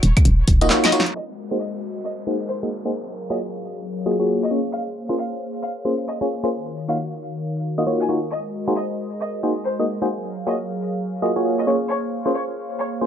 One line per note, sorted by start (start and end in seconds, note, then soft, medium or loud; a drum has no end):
0.03 0.13 D#1 loud
0.03 open hi-hat medium
0.17 kick loud
0.17 closed hi-hat medium
0.17 claves medium
0.25 0.43 D#1 loud
0.25 closed hi-hat medium
0.48 0.70 D#1 medium
0.48 kick medium
0.48 open hi-hat loud
0.61 0.67 A#3 loud
0.61 0.67 D#4 medium
0.61 0.67 F4 medium
0.61 0.67 F#4 medium
0.61 0.67 D#5 loud
0.61 closed hi-hat medium
0.70 0.90 A#3 medium
0.70 0.90 D#4 medium
0.70 0.90 F4 medium
0.70 0.90 F#4 medium
0.70 0.90 C#5 medium
0.70 snare medium
0.70 clap loud
0.84 0.92 D#5 medium
0.84 snare medium
0.84 closed hi-hat medium
0.84 claves medium
0.92 1.01 A#3 loud
0.92 1.01 D#4 medium
0.92 1.01 F4 medium
0.92 1.01 F#4 medium
0.92 1.01 C#5 loud
0.92 open hi-hat loud
1.00 snare medium
1.06 closed hi-hat soft
1.15 2.92 G#3 medium
1.15 2.92 F#4 medium
1.15 4.47 A#4 medium
1.15 2.92 C5 medium
1.15 2.92 D#5 medium
1.15 1.23 D#5 medium
1.15 downlifter medium
1.51 1.57 A#3 medium
1.51 1.57 D#4 medium
1.51 1.57 F#4 medium
1.51 1.57 G#4 medium
1.51 1.57 C5 loud
1.60 1.68 D#5 medium
2.04 2.12 D#5 medium
2.27 2.36 A#3 medium
2.27 2.36 D#4 medium
2.27 2.36 F#4 medium
2.27 2.36 G#4 medium
2.27 2.36 C5 medium
2.49 2.57 C5 medium
2.63 2.68 A#3 medium
2.63 2.68 D#4 medium
2.63 2.68 F#4 medium
2.63 2.68 G#4 medium
2.63 2.68 D#5 medium
2.85 2.91 A#3 medium
2.85 2.91 D#4 medium
2.85 2.91 F#4 medium
2.85 2.91 G#4 medium
2.85 2.91 C5 loud
2.94 4.49 F#3 medium
2.94 6.49 G#4 medium
2.94 8.27 C#5 medium
2.94 8.27 F5 medium
3.30 3.39 A#3 medium
3.30 3.39 F4 medium
3.30 3.39 F#4 medium
3.30 3.39 G#4 medium
3.30 3.39 C#5 medium
3.30 3.38 D#5 medium
4.06 4.15 A#3 medium
4.06 4.15 F4 medium
4.06 4.15 F#4 medium
4.06 4.15 G#4 medium
4.06 4.15 D#5 medium
4.20 4.49 A#3 medium
4.20 4.49 F4 medium
4.20 4.49 F#4 medium
4.20 4.49 G#4 medium
4.20 4.49 C#5 medium
4.42 4.50 D#5 medium
4.51 6.50 A#3 medium
4.51 4.59 A#3 medium
4.51 4.59 C#4 medium
4.51 4.59 F4 medium
4.51 4.59 G#4 medium
4.51 6.50 C5 medium
4.51 4.59 C#5 medium
4.73 4.81 F5 medium
5.09 5.15 A#3 medium
5.09 5.15 C#4 medium
5.09 5.15 F4 medium
5.09 5.15 G#4 medium
5.09 5.15 C5 loud
5.18 5.26 F5 medium
5.63 5.71 F5 medium
5.85 5.94 A#3 medium
5.85 5.94 C#4 medium
5.85 5.94 F4 medium
5.85 5.94 G#4 medium
5.85 5.94 C5 medium
6.07 6.15 D#5 medium
6.21 6.27 A#3 medium
6.21 6.27 C#4 medium
6.21 6.27 F4 medium
6.21 6.27 G#4 medium
6.21 6.27 C#5 medium
6.44 6.49 A#3 medium
6.44 6.49 C#4 medium
6.44 6.49 F4 medium
6.44 6.49 G#4 medium
6.44 6.49 C5 loud
6.52 8.30 D#3 medium
6.52 10.07 F#4 medium
6.52 11.63 A#4 medium
6.88 6.97 A#3 medium
6.88 6.97 D#4 medium
6.88 6.97 F4 medium
6.88 6.97 F#4 medium
6.88 6.97 C#5 medium
6.88 6.96 F5 medium
7.78 7.83 A#3 medium
7.78 7.83 D#4 medium
7.78 7.83 F4 medium
7.78 7.83 F#4 medium
7.78 7.83 D#5 loud
7.87 8.07 A#3 medium
7.87 8.07 D#4 medium
7.87 8.07 F4 medium
7.87 8.07 F#4 medium
7.87 8.07 C#5 medium
8.00 8.08 G#5 medium
8.09 8.18 A#3 medium
8.09 8.18 D#4 medium
8.09 8.18 F4 medium
8.09 8.18 F#4 medium
8.09 8.18 C#5 loud
8.31 10.09 G#3 medium
8.31 10.09 C5 medium
8.31 8.39 D#5 medium
8.31 10.09 D#5 medium
8.68 8.73 A#3 medium
8.68 8.73 D#4 medium
8.68 8.73 F#4 medium
8.68 8.73 G#4 medium
8.68 8.73 C5 loud
8.76 8.84 D#5 medium
9.21 9.29 D#5 medium
9.43 9.52 A#3 medium
9.43 9.52 D#4 medium
9.43 9.52 F#4 medium
9.43 9.52 G#4 medium
9.43 9.52 C5 medium
9.66 9.74 C5 medium
9.79 9.85 A#3 medium
9.79 9.85 D#4 medium
9.79 9.85 F#4 medium
9.79 9.85 G#4 medium
9.79 9.85 D#5 medium
10.02 10.07 A#3 medium
10.02 10.07 D#4 medium
10.02 10.07 F#4 medium
10.02 10.07 G#4 medium
10.02 10.07 C5 medium
10.10 11.66 F#3 medium
10.10 13.06 G#4 medium
10.10 13.06 C#5 medium
10.10 13.06 F5 medium
10.47 10.55 A#3 medium
10.47 10.55 F4 medium
10.47 10.55 F#4 medium
10.47 10.55 G#4 medium
10.47 10.55 C#5 medium
10.47 10.55 D#5 medium
11.22 11.31 A#3 medium
11.22 11.31 F4 medium
11.22 11.31 F#4 medium
11.22 11.31 G#4 medium
11.22 11.31 D#5 medium
11.36 11.65 A#3 medium
11.36 11.65 F4 medium
11.36 11.65 F#4 medium
11.36 11.65 G#4 medium
11.36 11.65 C#5 medium
11.58 11.66 D#5 medium
11.67 11.76 A#3 medium
11.67 13.06 A#3 medium
11.67 11.76 C#4 medium
11.67 11.76 F4 medium
11.67 11.76 G#4 medium
11.67 13.06 C5 medium
11.67 11.76 C#5 medium
11.89 11.97 C#5 medium
12.26 12.31 A#3 medium
12.26 12.31 C#4 medium
12.26 12.31 F4 medium
12.26 12.31 G#4 medium
12.26 12.31 C5 loud
12.34 12.42 C#5 medium
12.79 12.87 C#5 medium
13.01 13.06 A#3 medium
13.01 13.06 C#4 medium
13.01 13.06 F4 medium
13.01 13.06 G#4 medium
13.01 13.06 C5 medium